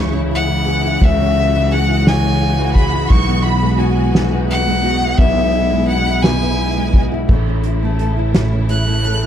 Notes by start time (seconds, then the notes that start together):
Already playing: C#2 C#3 E3 G#3 C#4 E4 G#4 C#6
0.13 C#4
0.31 E4, ride
0.35 F#5
0.49 E3
0.66 G#4, ride
0.85 E4
1.02 C#2 C#3 F#4 E5, kick, ride
1.20 C#4
1.37 E4, ride
1.54 E3
1.72 G#4 F#5, ride
1.88 E4
2.06 C#3 G#5, snare, ride
2.24 C#4
2.40 E4, ride
2.58 E3
2.75 G#4 B5, kick, ride
2.93 E4
3.10 B1 B2 B3 C#6, kick, ride
3.27 B3
3.43 E4 B5, ride
3.62 G#3
3.78 F#4 G#5, ride
3.96 E4
4.14 B2, snare, ride
4.31 B3
4.48 E4 F#5, ride
4.66 G#3
4.84 F#4, ride
5.01 E4
5.18 B1 B2 E4 E5, kick, ride
5.36 B3
5.53 E4, ride
5.71 G#3
5.87 F#4 F#5, ride
6.06 E4
6.22 B2 G#5, snare, ride
6.41 B3
6.59 E4, ride
6.76 G#3
6.94 F#4, kick, ride
7.12 E4
7.28 A1 A2 C#3 E3 A3 E4, kick, crash
7.47 C#4
7.64 E4, closed hi-hat
7.83 A3
7.99 A4, closed hi-hat
8.17 E4
8.34 A2, snare, closed hi-hat
8.52 C#4
8.69 E4 F#6, closed hi-hat
8.87 A3
9.04 A4, closed hi-hat
9.23 E4